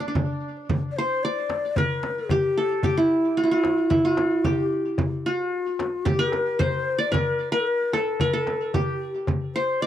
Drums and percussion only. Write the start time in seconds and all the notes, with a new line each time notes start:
0.03 darbuka ka
0.15 frame drum, darbuka dum
0.57 darbuka ka
0.69 frame drum, darbuka dum
0.83 darbuka ka
1.10 darbuka ka
1.50 darbuka tek, frame drum
1.76 darbuka dum, frame drum
2.03 darbuka tek, frame drum
2.17 darbuka ka
2.29 darbuka dum, frame drum
2.69 darbuka ka
2.83 darbuka dum, frame drum
2.97 darbuka ka
3.24 darbuka ka
3.64 darbuka tek, frame drum
3.90 darbuka dum, frame drum
4.17 darbuka tek, frame drum
4.31 darbuka ka
4.45 frame drum, darbuka dum
4.85 darbuka ka
4.98 darbuka dum, frame drum
5.12 darbuka ka
5.39 darbuka ka
5.79 darbuka tek, frame drum
6.06 darbuka dum, frame drum
6.32 darbuka tek, frame drum
6.47 darbuka ka
6.60 darbuka dum, frame drum
6.99 darbuka ka
7.13 darbuka dum, frame drum
7.40 darbuka ka
7.93 darbuka tek, frame drum
8.07 darbuka ka
8.20 darbuka dum, frame drum
8.47 darbuka tek, frame drum
8.74 darbuka dum, frame drum
9.14 darbuka ka
9.27 darbuka dum, frame drum
9.41 darbuka ka
9.68 darbuka ka